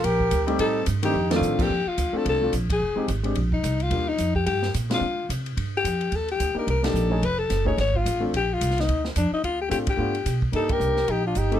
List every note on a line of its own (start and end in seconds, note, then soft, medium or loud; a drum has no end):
0.04 0.30 A#1 medium
0.04 0.48 G4 medium
0.04 0.47 A#4 loud
0.04 kick soft
0.04 ride medium
0.20 kick soft
0.31 0.58 D2 medium
0.31 kick soft
0.31 hi-hat pedal medium
0.31 ride medium
0.47 0.84 G3 medium
0.47 0.84 A3 medium
0.47 0.84 C4 medium
0.47 0.84 D#4 medium
0.47 0.84 G4 medium
0.47 ride soft
0.59 0.86 A2 medium
0.59 0.84 D#4 medium
0.59 0.85 A4 medium
0.59 kick soft
0.59 ride medium
0.86 1.13 G2 medium
0.86 kick soft
0.86 hi-hat pedal medium
0.86 ride medium
1.02 1.13 D#3 medium
1.02 1.13 A3 medium
1.02 1.13 C4 medium
1.02 1.14 D4 medium
1.02 1.40 D#4 medium
1.02 1.14 G4 medium
1.02 1.29 G4 medium
1.02 ride medium
1.14 1.40 F2 medium
1.30 1.56 D#3 medium
1.30 1.57 A3 medium
1.30 1.57 C4 medium
1.30 1.57 D4 medium
1.30 1.57 A4 medium
1.30 snare medium
1.30 ride medium
1.36 1.64 F4 medium
1.41 1.68 A2 medium
1.41 hi-hat pedal medium
1.59 1.69 F3 medium
1.59 1.69 A#3 medium
1.59 1.69 C4 medium
1.59 1.69 D4 medium
1.59 1.89 G4 medium
1.59 1.69 A4 medium
1.59 kick medium
1.59 crash medium
1.70 1.85 F2 medium
1.70 kick soft
1.85 2.18 F4 medium
1.85 muted upright bass stroke soft
1.97 2.11 D2 medium
1.97 kick soft
1.97 hi-hat pedal soft
1.97 ride medium
2.12 2.39 A3 medium
2.12 2.39 C4 medium
2.12 2.39 D4 medium
2.12 2.40 F4 medium
2.12 muted upright bass stroke soft
2.17 2.26 A4 medium
2.25 2.52 C2 medium
2.25 2.53 A4 medium
2.25 kick soft
2.25 ride medium
2.42 2.52 A3 medium
2.42 2.52 C4 medium
2.42 2.52 D4 medium
2.42 2.52 F4 medium
2.53 2.79 A#1 medium
2.53 kick soft
2.53 hi-hat pedal soft
2.53 ride medium
2.70 3.07 G#4 medium
2.70 kick medium
2.70 ride medium
2.79 2.95 F1 medium
2.95 3.06 G#3 medium
2.95 3.07 C4 medium
2.95 3.07 D#4 medium
2.95 3.07 G4 medium
2.95 muted upright bass stroke soft
3.08 3.35 G#1 medium
3.08 kick soft
3.08 hi-hat pedal soft
3.08 ride medium
3.23 3.34 G#3 medium
3.23 3.35 C4 medium
3.23 3.35 D4 medium
3.23 3.35 G4 medium
3.23 ride soft
3.35 3.62 A#1 medium
3.35 kick soft
3.35 ride medium
3.52 3.84 D#4 medium
3.52 kick soft
3.63 3.90 C2 medium
3.63 kick soft
3.63 hi-hat pedal medium
3.63 ride medium
3.80 4.10 F4 medium
3.80 ride soft
3.90 4.17 D#2 medium
3.90 4.05 G3 soft
3.90 4.06 A#3 soft
3.90 4.06 D4 soft
3.90 4.06 F4 soft
3.90 kick soft
3.90 ride medium
4.09 4.35 D#4 medium
4.18 4.45 F2 medium
4.18 kick soft
4.18 hi-hat pedal medium
4.18 ride medium
4.35 4.45 G4 medium
4.35 kick soft
4.46 4.73 G2 medium
4.46 4.72 G4 medium
4.46 kick soft
4.46 ride medium
4.63 snare soft
4.74 5.00 A#2 medium
4.74 kick soft
4.74 hi-hat pedal medium
4.74 ride medium
4.90 5.00 G#3 medium
4.90 5.00 C4 medium
4.90 5.01 D4 medium
4.90 5.01 F4 medium
4.90 5.28 F4 medium
4.90 snare medium
4.90 ride medium
5.01 5.28 D3 medium
5.29 5.56 C3 medium
5.29 kick soft
5.29 hi-hat pedal medium
5.29 ride medium
5.46 ride soft
5.57 5.83 G2 medium
5.57 kick soft
5.57 ride medium
5.77 6.17 G4 medium
5.84 6.11 F2 medium
5.84 kick soft
5.84 hi-hat pedal soft
5.84 ride medium
6.01 ride soft
6.12 6.38 D#2 medium
6.12 6.30 A4 medium
6.12 kick soft
6.12 ride medium
6.28 6.55 G4 medium
6.28 ride soft
6.40 6.54 D2 medium
6.40 kick soft
6.40 hi-hat pedal medium
6.40 ride medium
6.55 6.65 A#3 medium
6.55 6.65 D4 soft
6.55 6.66 D#4 soft
6.55 6.66 G4 medium
6.55 6.68 A#4 medium
6.55 muted upright bass stroke soft
6.67 6.93 C2 medium
6.67 6.85 A#4 medium
6.67 kick soft
6.67 ride medium
6.83 7.09 A#3 medium
6.83 7.09 D4 medium
6.83 7.09 D#4 soft
6.83 7.10 G4 medium
6.83 7.26 A4 medium
6.83 snare medium
6.83 ride medium
6.93 7.21 A#1 medium
6.93 hi-hat pedal medium
7.10 7.20 A3 medium
7.10 7.21 C#4 medium
7.10 7.21 D#4 medium
7.10 7.21 G#4 medium
7.22 7.49 F1 medium
7.22 7.40 B4 medium
7.22 kick soft
7.22 ride medium
7.39 7.66 A4 medium
7.50 7.76 F#1 medium
7.50 kick soft
7.50 snare soft
7.50 hi-hat pedal medium
7.50 ride medium
7.65 7.76 A3 medium
7.65 7.76 C#4 medium
7.65 7.76 D#4 medium
7.65 7.76 G#4 medium
7.65 7.77 C#5 medium
7.65 kick soft
7.77 8.04 G#1 medium
7.77 7.98 C#5 medium
7.77 kick soft
7.77 snare soft
7.77 ride medium
7.94 8.23 F4 medium
7.94 kick soft
8.05 8.32 A1 medium
8.05 kick soft
8.05 hi-hat pedal medium
8.05 ride medium
8.20 8.31 A3 medium
8.20 8.31 C4 medium
8.20 8.31 D4 medium
8.20 8.32 F4 medium
8.33 8.60 A#1 medium
8.33 8.54 G4 medium
8.33 kick soft
8.33 ride medium
8.53 8.82 F4 medium
8.61 8.87 C2 medium
8.61 kick soft
8.61 hi-hat pedal medium
8.61 ride medium
8.71 snare soft
8.78 9.06 D#4 medium
8.78 snare soft
8.78 ride soft
8.88 9.15 D2 medium
8.88 kick soft
8.88 ride medium
9.05 snare soft
9.16 9.31 F2 medium
9.16 9.31 D4 medium
9.16 kick soft
9.16 hi-hat pedal soft
9.16 ride medium
9.31 9.43 D#4 medium
9.31 muted upright bass stroke soft
9.43 9.70 D2 medium
9.43 9.59 F4 medium
9.43 kick soft
9.43 ride medium
9.61 9.71 G4 medium
9.69 9.97 A2 medium
9.69 9.84 A3 medium
9.69 9.85 C4 soft
9.69 9.85 D4 soft
9.69 9.85 F4 medium
9.69 9.78 G4 medium
9.69 kick soft
9.69 hi-hat pedal soft
9.69 ride medium
9.87 10.39 G4 medium
9.87 kick medium
9.87 ride medium
9.97 10.25 G2 medium
9.97 10.12 A3 soft
9.97 10.12 B3 medium
9.97 10.12 D4 soft
9.97 10.13 F4 medium
10.15 ride soft
10.26 10.52 B2 medium
10.26 kick soft
10.26 hi-hat pedal medium
10.26 ride medium
10.42 kick medium
10.52 10.79 G2 medium
10.52 10.93 A#3 soft
10.52 10.93 D4 soft
10.52 10.94 D#4 soft
10.52 10.72 D#4 medium
10.52 10.94 G4 medium
10.52 10.74 A4 medium
10.52 kick soft
10.52 ride medium
10.69 11.11 G4 medium
10.69 11.13 A#4 loud
10.69 kick medium
10.69 ride medium
10.80 11.07 C2 medium
10.80 hi-hat pedal soft
10.97 snare soft
11.08 11.35 A#1 medium
11.08 11.25 D#4 medium
11.08 11.26 G4 medium
11.08 kick soft
11.08 ride medium
11.25 11.38 D4 medium
11.25 11.39 F4 medium
11.35 11.60 G1 medium
11.35 11.53 D#4 medium
11.35 11.57 G4 medium
11.35 kick soft
11.35 hi-hat pedal medium
11.35 ride medium
11.52 11.60 A3 medium
11.52 11.60 C4 medium
11.52 11.60 D#4 medium
11.52 11.60 G4 medium
11.52 ride soft
11.56 11.60 A4 loud